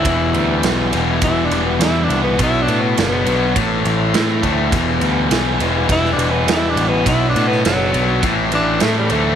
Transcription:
<<
  \new Staff \with { instrumentName = "Tonewheel organ" } { \time 4/4 \key e \minor \tempo 4 = 103 <b e' g'>1 | <b d' fis'>2 <c' e' a'>2 | <b e' g'>1 | <b d' fis'>2 <c' e' a'>2 | }
  \new Staff \with { instrumentName = "Tenor saxophone" } { \time 4/4 \key e \minor e'4 r4 \tuplet 3/2 { e'8 d'8 b8 e'8 d'8 b8 } | \tuplet 3/2 { e'8 d'8 b8 } b4 r2 | r2 \tuplet 3/2 { e'8 d'8 b8 e'8 d'8 b8 } | \tuplet 3/2 { e'8 d'8 b8 } fis4 r8 d'8 a16 g16 a8 | }
  \new Staff \with { instrumentName = "Distorted electric guitar" } { \clef bass \time 4/4 \key e \minor e,8 g8 b8 e8 g8 e8 g8 b8 | b,8 b8 d'8 fis8 a,8 e8 a8 c'8 | e,8 g8 b8 e8 g8 e8 g8 b8 | b,8 b8 d'8 fis8 a,8 e8 a8 c'8 | }
  \new Staff \with { instrumentName = "Overdriven electric guitar" } { \clef bass \time 4/4 \key e \minor <e, b, e>4. <e, b, e>2~ <e, b, e>8 | <b, fis b>4. <b, fis b>8 <a, e a>4. <a, e a>8 | <e, b, e>4. <e, b, e>2~ <e, b, e>8 | <b, fis b>4. <b, fis b>8 <a, e a>4. <a, e a>8 | }
  \new Staff \with { instrumentName = "Picked electric bass" } { \clef bass \time 4/4 \key e \minor e,,8 d,8 b,,8 e,,8 e,,8 e,,8 e,8 c,8 | b,,8 a,8 fis,,8 b,,8 a,,8 a,,8 a,8 d,8 | e,,8 d,8 b,,8 e,,8 e,,8 e,,8 e,8 a,,8 | b,,8 a,8 fis,,8 b,,8 a,,8 a,,8 a,8 d,8 | }
  \new DrumStaff \with { instrumentName = "Drums" } \drummode { \time 4/4 <bd cymr>8 cymr8 <cymr sn>8 cymr8 <bd cymr>8 cymr8 <cymr sn>8 cymr8 | <bd cymr>8 cymr8 <cymr sn>8 cymr8 <bd cymr>8 cymr8 <cymr sn>8 <bd cymr>8 | <bd cymr>8 cymr8 <cymr sn>8 cymr8 <bd cymr>16 sn16 cymr8 <cymr sn>8 cymr8 | <bd cymr>8 cymr16 sn16 <cymr sn>8 cymr8 <bd cymr>8 cymr8 <cymr sn>8 cymr8 | }
>>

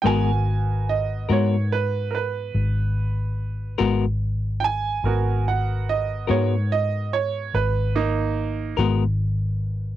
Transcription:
<<
  \new Staff \with { instrumentName = "Upright piano" } { \time 12/8 \key gis \minor \tempo 4. = 48 << { <g'' gis''>4 dis''8 cis''8 b'8 <ais' b'>2 r4 <g'' gis''>8~ | <g'' gis''>8 fis''8 dis''8 cis''8 dis''8 cis''8 b'8 <ais dis'>4 r4. | } \\ { <b fis' ais'>1. | <b fis' ais'>1. | } >> }
  \new Staff \with { instrumentName = "Clean electric guitar" } { \time 12/8 \key gis \minor <gis b fis' ais'>8 r4 <gis b fis' ais'>8 r2 r8 <gis b fis' ais'>8 r4 | r4. <gis b fis' ais'>8 r2 r8 <gis b fis' ais'>8 r4 | }
  \new Staff \with { instrumentName = "Fingered electric bass" } { \clef bass \time 12/8 \key gis \minor gis,,4. gis,4. gis,,4. gis,,4. | gis,,4. gis,4. gis,,4. gis,,4. | }
>>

